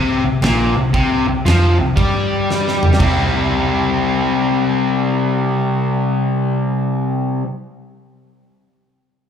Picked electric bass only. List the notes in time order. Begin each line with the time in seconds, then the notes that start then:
Already playing: C2
0.24 C2
0.42 A#1
0.77 C2
0.94 C2
1.28 C2
1.45 F2
1.80 C2
1.98 G2
3.00 C2